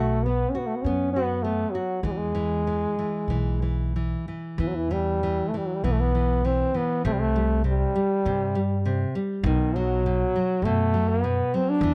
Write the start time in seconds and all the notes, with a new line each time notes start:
Already playing: B1 A3 B3 F#4
0.24 B3
0.50 C#4
0.55 B3 F#4
0.67 A3
0.76 B3
0.83 F#2 B3 C#4
1.13 B3 F#4
1.43 A3 B3
1.71 F#3 F#4
2.03 E2 E3 G#3
2.12 F#3
2.17 G#3
2.35 E3
2.67 E3
2.99 E3
3.28 B1 E3
3.62 E3
3.96 E3
4.28 E3
4.58 E2 E3
4.68 F#3
4.75 E3
4.91 E3 G3
5.23 E3
5.49 A3
5.54 E3 G3
5.66 F#3
5.75 G3
5.84 B1 E3 B3
5.92 A3
6.00 B3
6.15 E3
6.45 E3 C4
6.74 E3 B3
7.05 C2 C3 A3
7.13 G3
7.20 A3
7.36 G3
7.64 C3 G3
7.96 G3
8.25 G2 C3
8.55 G3
8.85 C3
9.15 G3
9.43 B1 B2 D#3
9.75 F#3
10.06 B2
10.36 F#3
10.62 F#2 B2 A3
10.94 F#3
11.09 B3
11.24 B2
11.54 F#3 C4
11.70 D4
11.81 E2 E3